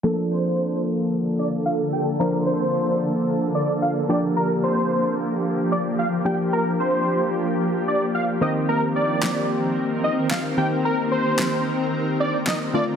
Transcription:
<<
  \new Staff \with { instrumentName = "Analog synth lead" } { \time 4/4 \key bes \major \tempo 4 = 111 a'8 c''4 r4 d''16 r16 f''16 r16 g''16 r16 | bes'8 c''4 r4 d''8 f''16 r16 d''16 r16 | bes'8 c''4 r4 d''16 r16 f''16 r16 g''16 r16 | bes'8 c''4 r4 d''8 f''16 r16 ees''16 r16 |
bes'8 d''4 r4 ees''16 r16 f''16 r16 g''16 r16 | bes'8 c''4 r4 d''8 ees''16 r16 d''16 r16 | }
  \new Staff \with { instrumentName = "Ambient pad" } { \time 4/4 \key bes \major << { <d a'>1~ | <d a'>2.~ <d a'>8 <f g'>8~ | <f g'>1~ | <f g'>2.~ <f g'>8 <ees bes'>8~ |
<ees bes'>1~ | <ees bes'>2.~ <ees bes'>8 r8 | } \\ { bes1~ | bes1~ | bes1~ | bes2.~ bes8 c'8~ |
c'1~ | c'2.~ c'8 r8 | } >> }
  \new Staff \with { instrumentName = "Synth keys" } { \time 4/4 \key bes \major <f bes d' a'>1 | <f bes d' c''>2.~ <f bes d' c''>8 <f bes d' g'>8~ | <f bes d' g'>2.~ <f bes d' g'>8 <f bes d' g'>8~ | <f bes d' g'>2.~ <f bes d' g'>8 <ees bes c' g'>8~ |
<ees bes c' g'>2.~ <ees bes c' g'>8 <ees bes c' g'>8~ | <ees bes c' g'>2.~ <ees bes c' g'>8 <d a c' f'>8 | }
  \new DrumStaff \with { instrumentName = "Drums" } \drummode { \time 4/4 r4 r4 r4 r4 | r4 r4 r4 r4 | r4 r4 r4 r4 | r4 r4 r4 r4 |
r4 <hc sn>4 r4 <hc sn>4 | r4 <hc sn>4 r4 <hc sn>4 | }
>>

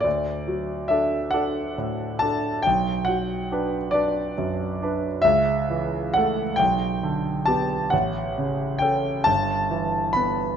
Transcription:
\new Staff \with { instrumentName = "Grand piano" } { \time 12/8 \key d \major \tempo 4. = 45 << { d''4 e''8 fis''4 a''8 g''8 fis''4 d''4. | e''4 fis''8 g''4 a''8 fis''4 g''8 a''4 b''8 | } \\ { d,8 fis8 <d' a'>8 <d' a'>8 a,8 <d' a'>8 b,,8 fis8 <d' b'>8 <d' b'>8 fis,8 <d' b'>8 | cis,8 e8 <a a'>8 b,,8 d8 <b g'>8 a,,8 cis8 <cis' a'>8 g,,8 e8 <b b'>8 | } >> }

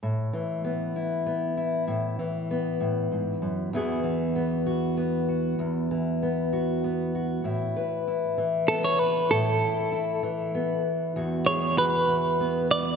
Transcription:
<<
  \new Staff \with { instrumentName = "Clean electric guitar" } { \time 6/8 \key e \mixolydian \tempo 4. = 65 r2. | r2. | r2. | r2. |
r2 a'16 cis''16 b'8 | a'2~ a'8 r8 | r8 cis''8 b'4. d''8 | }
  \new Staff \with { instrumentName = "Steel-string acoustic guitar" } { \time 6/8 \key e \mixolydian << { r4 b8 e'8 b8 e'8 | r4 b2 | <e b fis' gis'>4 b8 fis'8 b8 fis'8 | r4 b8 fis'8 b8 fis'8 |
e'8 b'8 e'4 b4 | e'8 e'8 e'4 b4 | fis'8 gis'8 fis'4 b4 | } \\ { a,8 e2~ e8 | a,8 e4 a,8 gis,8 fis,8 | e,8 e2~ e8 | e,8 e2~ e8 |
a,4. e4. | a,4. e4. | e,4. e4. | } >> }
>>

